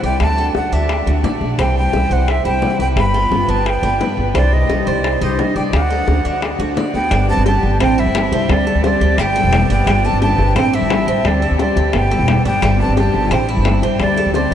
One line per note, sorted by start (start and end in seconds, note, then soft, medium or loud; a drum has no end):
0.02 0.19 C2 medium
0.02 0.20 G3 soft
0.02 0.20 C4 soft
0.02 0.19 E4 soft
0.02 0.37 D5 medium
0.02 0.20 G5 loud
0.02 high bongo soft
0.20 0.53 D2 medium
0.20 0.37 D3 medium
0.20 0.37 A3 medium
0.20 0.37 D4 medium
0.20 0.36 F#4 medium
0.20 0.53 A5 loud
0.20 high bongo medium
0.37 0.54 A3 soft
0.37 0.55 D4 soft
0.37 0.54 F#4 soft
0.37 0.72 A4 medium
0.37 high bongo soft
0.54 0.71 D2 medium
0.54 0.88 D3 medium
0.54 0.88 A3 medium
0.54 0.89 D4 medium
0.54 0.89 F#4 medium
0.54 0.75 F#5 medium
0.54 high bongo medium
0.72 1.05 D2 medium
0.72 1.06 D4 medium
0.72 1.15 E5 medium
0.89 muted steel-string acoustic guitar stroke medium
0.89 high bongo medium
1.06 1.23 D2 medium
1.06 1.23 A3 soft
1.06 1.23 D4 soft
1.06 1.23 F#4 soft
1.06 1.24 F#4 medium
1.06 high bongo soft
1.23 1.39 A1 medium
1.23 1.40 D3 medium
1.23 1.41 A3 medium
1.23 1.40 D4 medium
1.23 1.39 F#4 medium
1.23 1.58 D5 medium
1.23 high bongo soft
1.23 low bongo medium
1.41 1.57 B1 medium
1.41 1.59 A3 soft
1.41 1.58 D4 soft
1.41 1.58 F#4 soft
1.41 high bongo soft
1.58 1.91 C2 medium
1.58 1.75 C3 medium
1.58 1.75 E3 medium
1.58 1.76 G3 medium
1.58 1.92 C4 medium
1.58 1.76 C4 medium
1.58 1.75 E4 medium
1.58 1.76 G5 medium
1.58 high bongo medium
1.76 1.93 G3 soft
1.76 1.93 C4 soft
1.76 1.93 E4 soft
1.76 2.14 G5 medium
1.76 high bongo soft
1.93 2.09 C2 medium
1.93 2.26 C3 medium
1.93 2.27 E3 medium
1.93 2.27 G3 medium
1.93 2.27 C4 medium
1.93 2.10 E4 medium
1.93 2.27 E4 medium
1.93 high bongo medium
2.10 2.43 C2 medium
2.10 2.44 C5 medium
2.10 2.31 F#5 medium
2.28 2.46 E5 medium
2.28 muted steel-string acoustic guitar stroke medium
2.28 high bongo medium
2.45 2.61 C2 medium
2.45 2.62 G3 soft
2.45 2.62 C4 soft
2.45 2.62 E4 soft
2.45 2.79 E4 medium
2.45 2.78 G5 medium
2.45 high bongo soft
2.62 2.79 C3 medium
2.62 2.79 E3 medium
2.62 2.79 G3 medium
2.62 2.79 C4 medium
2.62 2.78 E4 medium
2.62 high bongo soft
2.62 low bongo medium
2.79 2.95 C2 medium
2.79 2.95 G3 soft
2.79 2.97 C4 soft
2.79 2.96 E4 soft
2.79 3.13 B4 medium
2.79 2.87 G5 medium
2.79 high bongo soft
2.96 3.29 G1 medium
2.96 3.13 G3 medium
2.96 3.14 B3 medium
2.96 3.13 F4 medium
2.96 3.51 B5 loud
2.96 high bongo medium
3.14 3.30 B3 soft
3.14 3.31 F4 soft
3.14 3.48 F4 medium
3.14 high bongo soft
3.31 3.47 G1 medium
3.31 3.64 G3 medium
3.31 3.64 B3 medium
3.31 3.65 F4 medium
3.31 high bongo medium
3.48 3.81 G1 medium
3.48 3.82 B3 medium
3.48 3.69 A5 medium
3.65 4.18 G5 loud
3.65 muted steel-string acoustic guitar stroke medium
3.65 high bongo medium
3.83 3.99 G1 medium
3.83 4.00 B3 soft
3.83 4.00 D4 medium
3.83 4.00 F4 soft
3.83 high bongo soft
4.00 4.17 G3 medium
4.00 4.17 B3 medium
4.00 4.16 F4 medium
4.00 4.34 B4 medium
4.00 high bongo soft
4.00 low bongo medium
4.17 4.34 G1 medium
4.17 4.35 B3 soft
4.17 4.34 F4 soft
4.17 high bongo soft
4.34 4.67 C2 medium
4.34 4.51 C3 medium
4.34 4.51 D#3 medium
4.34 4.52 G3 medium
4.34 4.68 C4 medium
4.34 4.52 D4 medium
4.34 4.51 G4 medium
4.34 4.55 D5 medium
4.34 high bongo medium
4.52 4.69 G3 soft
4.52 4.69 D4 soft
4.52 4.69 G4 soft
4.52 4.89 D#5 medium
4.52 high bongo soft
4.69 4.86 C2 medium
4.69 5.03 C3 medium
4.69 5.03 D#3 medium
4.69 5.04 G3 medium
4.69 5.04 D4 medium
4.69 4.86 D#4 medium
4.69 5.04 G4 medium
4.69 high bongo medium
4.87 5.20 C2 medium
4.87 5.20 C5 medium
4.87 5.22 D5 medium
5.04 muted steel-string acoustic guitar stroke medium
5.04 high bongo medium
5.21 5.38 C2 medium
5.21 5.38 G3 soft
5.21 5.38 D4 soft
5.21 5.55 D#4 medium
5.21 5.38 G4 medium
5.21 5.41 C5 medium
5.21 high bongo soft
5.38 5.55 C3 medium
5.38 5.55 D#3 medium
5.38 5.56 G3 medium
5.38 5.55 D4 medium
5.38 5.54 G4 medium
5.38 5.56 D#5 medium
5.38 high bongo soft
5.38 low bongo medium
5.55 5.72 C2 medium
5.55 5.73 G3 soft
5.55 5.73 D4 soft
5.55 5.72 G4 medium
5.55 5.89 D5 medium
5.55 5.63 G5 medium
5.55 high bongo soft
5.73 6.06 D2 medium
5.73 5.89 D3 medium
5.73 5.90 A3 medium
5.73 5.90 D4 medium
5.73 5.89 F#4 medium
5.73 6.73 F#5 loud
5.73 high bongo medium
5.90 6.06 A3 soft
5.90 6.07 D4 soft
5.90 6.24 A4 medium
5.90 high bongo soft
6.07 6.24 D2 medium
6.07 6.41 D3 medium
6.07 6.41 A3 medium
6.07 6.41 D4 medium
6.07 6.41 F#4 medium
6.07 high bongo medium
6.25 6.58 D2 medium
6.25 6.58 D4 medium
6.42 muted steel-string acoustic guitar stroke medium
6.42 high bongo medium
6.59 6.75 D2 medium
6.59 6.75 A3 soft
6.59 6.76 D4 soft
6.59 6.76 F#4 soft
6.59 6.76 F#4 medium
6.59 high bongo soft
6.76 6.93 D3 medium
6.76 6.93 A3 medium
6.76 6.93 D4 medium
6.76 6.92 F#4 medium
6.76 7.10 D5 medium
6.76 high bongo soft
6.76 low bongo medium
6.94 7.10 D2 medium
6.94 7.11 A3 soft
6.94 7.27 B3 medium
6.94 7.11 D4 soft
6.94 7.10 F#4 soft
6.94 7.27 G5 loud
6.94 high bongo soft
7.11 7.36 G1 medium
7.11 7.28 D3 medium
7.11 7.28 G3 medium
7.11 7.28 B3 medium
7.11 7.45 D4 medium
7.11 7.27 G4 medium
7.11 high bongo medium
7.28 7.45 G3 soft
7.28 7.46 B3 soft
7.28 7.45 C4 medium
7.28 7.45 G4 soft
7.28 7.45 A5 loud
7.28 high bongo soft
7.37 7.62 G1 medium
7.46 7.80 D3 medium
7.46 7.80 G3 medium
7.46 7.80 B3 medium
7.46 7.78 D4 medium
7.46 7.79 G4 medium
7.46 7.80 G4 medium
7.46 7.78 A5 medium
7.46 high bongo medium
7.63 7.79 G1 medium
7.63 high bongo soft
7.80 8.05 A1 loud
7.80 7.99 C4 medium
7.80 7.97 C5 medium
7.80 8.01 G5 loud
7.80 muted steel-string acoustic guitar stroke medium
7.80 high bongo medium
7.97 8.48 G3 medium
7.97 8.14 G3 soft
7.97 8.15 C4 soft
7.97 8.14 E4 medium
7.97 8.31 E4 medium
7.97 8.53 E5 medium
8.06 8.30 G1 medium
8.14 8.31 E3 medium
8.14 8.31 G3 medium
8.14 8.32 C4 medium
8.14 8.31 E4 medium
8.14 high bongo medium
8.14 low bongo medium
8.32 8.48 C2 medium
8.32 8.49 G3 soft
8.32 8.66 C4 medium
8.32 8.49 C4 soft
8.32 8.49 E4 medium
8.32 high bongo soft
8.49 8.74 D2 loud
8.49 8.66 D3 medium
8.49 8.83 G3 medium
8.49 8.66 G3 medium
8.49 8.66 C4 medium
8.49 8.65 G4 medium
8.49 8.85 D5 loud
8.49 high bongo medium
8.66 8.83 G3 soft
8.66 8.84 C4 soft
8.66 8.83 G4 soft
8.66 8.83 A4 medium
8.66 high bongo soft
8.75 8.99 D2 medium
8.84 9.17 D3 medium
8.84 9.19 G3 medium
8.84 9.18 G3 medium
8.84 9.18 C4 medium
8.84 9.18 G4 medium
8.84 9.00 C5 medium
8.84 9.21 D5 medium
8.84 high bongo medium
9.01 9.17 D2 medium
9.01 9.34 G4 medium
9.01 high bongo soft
9.18 9.43 G1 medium
9.18 9.69 B3 medium
9.18 9.71 G5 loud
9.18 muted steel-string acoustic guitar stroke medium
9.18 high bongo medium
9.35 9.52 G3 soft
9.35 9.52 B3 soft
9.35 9.52 G4 medium
9.35 9.69 A4 medium
9.35 high bongo soft
9.44 9.68 E1 medium
9.52 9.69 D3 medium
9.52 9.69 G3 medium
9.52 9.70 B3 medium
9.52 9.69 G4 medium
9.52 high bongo medium
9.52 low bongo medium
9.70 9.86 G1 medium
9.70 9.87 G3 soft
9.70 10.05 B3 medium
9.70 9.87 B3 soft
9.70 9.86 D4 medium
9.70 9.86 G4 medium
9.70 10.07 G5 loud
9.86 10.11 G1 loud
9.86 10.04 D3 medium
9.86 10.04 G3 medium
9.86 10.04 B3 medium
9.86 10.21 D4 medium
9.86 10.03 G4 medium
9.86 high bongo medium
10.04 10.21 G3 soft
10.04 10.22 B3 soft
10.04 10.22 C4 medium
10.04 10.21 G4 soft
10.04 10.22 A5 loud
10.04 high bongo soft
10.13 10.37 G1 medium
10.21 10.55 D3 medium
10.21 10.55 G3 medium
10.21 10.56 B3 medium
10.21 10.54 D4 medium
10.21 10.55 G4 medium
10.21 10.56 G4 medium
10.21 10.54 A5 loud
10.21 high bongo medium
10.38 10.55 G1 loud
10.38 high bongo soft
10.55 10.80 A1 loud
10.55 10.73 C4 medium
10.55 10.73 C5 medium
10.55 10.76 G5 loud
10.55 muted steel-string acoustic guitar stroke medium
10.55 high bongo medium
10.73 11.24 G3 medium
10.73 10.90 G3 soft
10.73 10.90 C4 soft
10.73 10.90 E4 medium
10.73 11.07 E4 medium
10.73 11.28 E5 medium
10.81 11.06 G1 medium
10.90 11.07 E3 medium
10.90 11.07 G3 medium
10.90 11.08 C4 medium
10.90 11.07 E4 medium
10.90 high bongo medium
10.90 low bongo medium
11.07 11.24 A1 medium
11.07 11.24 G3 soft
11.07 11.41 C4 medium
11.07 11.25 C4 soft
11.07 11.24 E4 soft
11.07 high bongo soft
11.25 11.49 D2 loud
11.25 11.41 D3 medium
11.25 11.58 G3 medium
11.25 11.42 G3 medium
11.25 11.42 C4 medium
11.25 11.41 G4 medium
11.25 11.60 D5 medium
11.25 high bongo medium
11.42 11.59 G3 soft
11.42 11.59 C4 soft
11.42 11.59 G4 soft
11.42 11.59 A4 medium
11.42 high bongo soft
11.50 11.75 D2 medium
11.59 11.93 D3 medium
11.59 11.91 G3 medium
11.59 11.93 G3 medium
11.59 11.94 C4 medium
11.59 11.94 G4 medium
11.59 11.76 C5 medium
11.59 11.92 D5 medium
11.59 high bongo medium
11.76 11.93 D2 medium
11.76 12.10 G4 medium
11.76 high bongo soft
11.93 12.18 G1 medium
11.93 12.42 B3 medium
11.93 12.43 G5 medium
11.93 muted steel-string acoustic guitar stroke medium
11.93 high bongo medium
12.11 12.28 G3 soft
12.11 12.28 B3 soft
12.11 12.27 G4 medium
12.11 12.44 A4 medium
12.11 high bongo soft
12.19 12.44 E1 medium
12.28 12.45 D3 medium
12.28 12.45 G3 medium
12.28 12.45 B3 medium
12.28 12.44 G4 medium
12.28 high bongo medium
12.28 low bongo medium
12.45 12.61 G1 medium
12.45 12.62 G3 soft
12.45 12.77 B3 medium
12.45 12.62 B3 soft
12.45 12.62 D4 medium
12.45 12.62 G4 medium
12.45 12.78 G5 loud
12.62 12.87 G1 loud
12.62 12.79 D3 medium
12.62 12.80 G3 medium
12.62 12.79 B3 medium
12.62 12.96 D4 medium
12.62 12.78 G4 medium
12.62 high bongo medium
12.80 12.96 G3 soft
12.80 12.97 B3 soft
12.80 12.96 C4 medium
12.80 12.96 G4 soft
12.80 12.96 A5 medium
12.80 high bongo soft
12.88 13.13 G1 medium
12.97 13.30 D3 medium
12.97 13.31 G3 medium
12.97 13.31 B3 medium
12.97 13.32 D4 medium
12.97 13.30 G4 medium
12.97 13.31 G4 medium
12.97 13.34 A5 medium
12.97 high bongo medium
13.14 13.30 G1 medium
13.14 high bongo soft
13.31 13.56 A1 loud
13.31 13.49 C4 medium
13.31 13.48 C5 medium
13.31 13.49 G5 medium
13.31 muted steel-string acoustic guitar stroke medium
13.31 high bongo medium
13.49 13.65 G3 soft
13.49 13.66 C4 soft
13.49 13.65 E4 soft
13.49 13.82 E4 medium
13.57 13.81 G1 medium
13.65 13.82 E3 medium
13.65 13.82 G3 medium
13.65 13.82 C4 medium
13.65 13.81 E4 medium
13.65 high bongo medium
13.65 low bongo medium
13.82 13.99 A1 medium
13.82 14.00 G3 soft
13.82 14.16 C4 medium
13.82 14.00 C4 soft
13.82 13.99 E4 soft
13.82 high bongo soft
13.99 14.24 D2 loud
13.99 14.17 D3 medium
13.99 14.32 G3 medium
13.99 14.17 G3 medium
13.99 14.17 C4 medium
13.99 14.16 G4 medium
13.99 14.33 D5 medium
13.99 high bongo medium
14.17 14.34 G3 soft
14.17 14.34 C4 soft
14.17 14.34 G4 soft
14.17 14.34 A4 medium
14.17 high bongo soft
14.26 14.50 D2 medium
14.34 14.54 D3 medium
14.34 14.54 G3 medium
14.34 14.54 C4 medium
14.34 14.54 G4 medium
14.34 14.51 C5 medium
14.34 14.54 D5 medium
14.34 high bongo medium